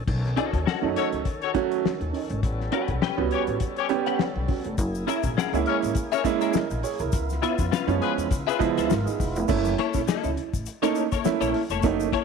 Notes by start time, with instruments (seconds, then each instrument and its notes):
0.07 upright bass B1, tonewheel organ D#3 C#4 A4, kick, crash
0.25 snare, closed hi-hat
0.36 upright piano C#4 D#4, clean electric guitar C#4 F#4 A4 D#5, closed hi-hat
0.53 upright bass D#2, upright piano C#4 F#4, kick, closed hi-hat
0.66 clean electric guitar C#4 F#4 A4 F#5, snare
0.82 upright bass F#2, upright piano F#3 A3 C#4 D#4
0.96 horn section F#4 A4 C#5, closed hi-hat
1.12 upright bass C#2, closed hi-hat
1.25 kick, closed hi-hat
1.41 horn section F#4 A4 C#5, closed hi-hat
1.54 upright piano F#3 A3 C#4 F#4, kick, closed hi-hat
1.71 closed hi-hat
1.85 muted upright bass stroke, snare
2.01 upright bass D#2, closed hi-hat
2.13 upright piano C#4 D#4, open hi-hat
2.30 upright bass G#1, upright piano C#4 D#4, closed hi-hat
2.43 upright bass A1, tonewheel organ G3 B3 A4, kick, closed hi-hat
2.60 snare
2.72 upright piano C#4 F#4, clean electric guitar C#4 G4 B4 F#5, closed hi-hat
2.88 upright bass B1, upright piano C#4 A4, kick, closed hi-hat
3.02 clean electric guitar C#4 G4 B4 G5, snare
3.17 upright bass C#2, upright piano G3 B3 C#4 F#4
3.31 horn section C#4 G4 C#5, closed hi-hat
3.47 upright bass A1, closed hi-hat
3.60 kick, closed hi-hat
3.76 horn section C#4 G4 C#5, closed hi-hat
3.89 upright piano G3 B3 C#4 G4, closed hi-hat
4.06 clean electric guitar C#4 G4 B4 F#5, closed hi-hat
4.19 muted upright bass stroke, snare
4.36 upright bass B1
4.48 upright piano C#4 F#4, kick, open hi-hat
4.64 upright bass F1, upright piano C#4 A4, closed hi-hat
4.78 upright bass F#1, tonewheel organ A#3 E4 G#4, kick, closed hi-hat, shaker
4.95 shaker
5.07 upright piano C#4 E4, clean electric guitar C#4 G#4 A#4 E5, closed hi-hat, shaker
5.23 upright bass A#1, upright piano C#4 F#4, kick, closed hi-hat, shaker
5.37 clean electric guitar C#4 G#4 A#4 F#5, snare, shaker
5.53 upright bass C#2, upright piano G#3 A#3 C#4 E4, closed hi-hat, shaker
5.66 horn section G#4 A#4 C#5, closed hi-hat
5.82 upright bass A1, closed hi-hat, shaker
5.95 kick, closed hi-hat, shaker
6.12 clean electric guitar C#4 G#4 A#4 E5, horn section G#4 A#4 C#5, closed hi-hat, shaker
6.24 upright piano G#3 A#3 C#4 E4, kick, closed hi-hat, shaker
6.41 clean electric guitar C#4 G#4 A#4 E5, closed hi-hat, shaker
6.53 upright piano A#4 D#5, muted upright bass stroke, snare, shaker
6.71 upright bass A#1, closed hi-hat, shaker
6.83 upright piano G#4 C#5, open hi-hat, shaker
6.99 upright bass C2, upright piano E4 A#4, closed hi-hat, shaker
7.12 upright bass C#2, tonewheel organ B3 F4, kick, closed hi-hat, shaker
7.30 snare, shaker
7.42 upright piano B3 E4, clean electric guitar C#4 F4 B4 E5, closed hi-hat, shaker
7.58 upright bass F2, upright piano B3 C#4, kick, closed hi-hat, shaker
7.71 clean electric guitar C#4 F4 B4 F5, snare, shaker
7.87 upright bass F#2, upright piano F3 G#3 B3 C#4, closed hi-hat, shaker
8.02 horn section F4 G#4 B4, closed hi-hat
8.17 upright bass E2, closed hi-hat, shaker
8.31 upright bass C#3, kick, closed hi-hat, shaker
8.47 clean electric guitar C#4 F4 B4 E5, horn section F4 G#4 B4, shaker
8.59 upright bass C#3, upright piano F3 G#3 B3 E4, kick, closed hi-hat, shaker
8.78 upright bass C#2, clean electric guitar C#4 F4 B4 E5, closed hi-hat, shaker
8.89 upright bass G#1, upright piano F4 A#4, snare, shaker
9.05 upright piano D#4 G#4, shaker
9.20 upright bass E1, kick, open hi-hat, shaker
9.36 upright bass F1, upright piano B3 E4, closed hi-hat, shaker
9.48 upright bass F#1, upright piano A3 A#3 C#4 E4, kick, crash, shaker
9.65 snare, closed hi-hat, shaker
9.78 clean electric guitar A#3 E4 A4 C#5, closed hi-hat
9.94 upright bass A#1, upright piano C#4 E4, kick, closed hi-hat, shaker
10.07 clean electric guitar A#3 E4 A4 D#5, upright piano C#4, snare, shaker
10.23 upright bass C#2, upright piano C#4 E4, shaker
10.37 upright piano C#4 E4, closed hi-hat
10.54 upright bass A1, kick, closed hi-hat, shaker
10.66 closed hi-hat, shaker
10.82 upright piano A3 A#3 C#4 D#4, clean electric guitar A#3 E4 A4 C#5, closed hi-hat, shaker
10.95 closed hi-hat, shaker
11.12 clean electric guitar A#3 E4 A4 C#5, kick, closed hi-hat, shaker
11.25 upright piano A3 A#3 C#4 E4, muted upright bass stroke, snare, shaker
11.40 upright bass A#1, clean electric guitar A#3 E4 A4 C#5, shaker
11.54 open hi-hat
11.70 upright bass F1, clean electric guitar A#3 E4 A4 C#5, closed hi-hat, shaker
11.83 upright bass F#1, upright piano A3 A#3 C#4 D#4, kick, closed hi-hat, shaker
12.00 shaker
12.13 clean electric guitar A#3 E4 A4 C#5, kick, closed hi-hat